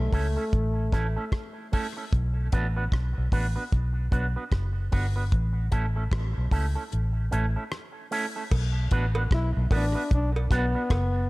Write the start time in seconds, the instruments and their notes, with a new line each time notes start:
Already playing: trombone A3
0.00 fingered electric bass B1
0.12 fingered electric bass C#2, clean electric guitar A3 C#4 E4 A4, kick, open hi-hat
0.37 clean electric guitar A3 C#4 E4 A4
0.53 fingered electric bass A1, kick, hi-hat pedal
0.92 fingered electric bass A1, clean electric guitar A3 C#4 E4 A4, kick, cross-stick, closed hi-hat
1.16 clean electric guitar A3 C#4 E4 A4
1.32 kick, cross-stick
1.72 clean electric guitar A3 C#4 E4 A4, kick, open hi-hat
1.97 clean electric guitar A3 C#4 E4 A4
2.13 fingered electric bass B1, kick, hi-hat pedal
2.52 fingered electric bass A1, clean electric guitar B3 D4 F#4 B4, kick, closed hi-hat
2.77 clean electric guitar B3 D4 F#4 B4
2.92 fingered electric bass B1, kick, cross-stick
3.18 fingered electric bass B1
3.32 fingered electric bass A1, clean electric guitar B3 D4 F#4 B4, kick, open hi-hat
3.56 clean electric guitar B3 D4 F#4 B4
3.72 fingered electric bass B1, kick, hi-hat pedal
4.11 fingered electric bass B1, clean electric guitar B3 D4 F#4 B4, kick, closed hi-hat
4.36 clean electric guitar B3 D4 F#4 B4
4.52 fingered electric bass F#1, kick, cross-stick
4.92 fingered electric bass G1, clean electric guitar B3 D4 F#4 B4, kick, open hi-hat
5.16 clean electric guitar B3 D4 F#4 B4
5.32 fingered electric bass A1, kick, hi-hat pedal
5.71 fingered electric bass A1, clean electric guitar A3 C#4 E4 A4, kick, closed hi-hat
5.96 clean electric guitar A3 C#4 E4 A4
6.12 fingered electric bass A1, kick, cross-stick
6.38 fingered electric bass B1
6.51 fingered electric bass C#2, clean electric guitar A3 C#4 E4 A4, kick, open hi-hat
6.75 clean electric guitar A3 C#4 E4 A4
6.92 fingered electric bass A1, hi-hat pedal
7.31 fingered electric bass A1, clean electric guitar A3 C#4 E4 A4, closed hi-hat
7.56 clean electric guitar A3 C#4 E4 A4
7.72 cross-stick
8.11 clean electric guitar A3 C#4 E4 A4, open hi-hat
8.36 clean electric guitar A3 C#4 E4 A4
8.51 fingered electric bass B1, kick, crash, cowbell
8.91 fingered electric bass A1, clean electric guitar B3 D4 F#4 B4, kick, closed hi-hat
9.15 clean electric guitar B3 D4 F#4 B4, cowbell
9.31 fingered electric bass B1, trombone E4, kick, cross-stick
9.57 fingered electric bass B1
9.71 fingered electric bass A1, clean electric guitar B3 D4 F#4 B4, kick, open hi-hat, cowbell
9.75 trombone D4
9.95 clean electric guitar B3 D4 F#4 B4
10.11 fingered electric bass B1, trombone D4, kick, hi-hat pedal
10.36 cowbell
10.51 fingered electric bass B1, clean electric guitar B3 D4 F#4 B4, kick, cross-stick, closed hi-hat
10.55 trombone B3
10.75 clean electric guitar B3 D4 F#4 B4
10.90 fingered electric bass F#1, kick, cross-stick, cowbell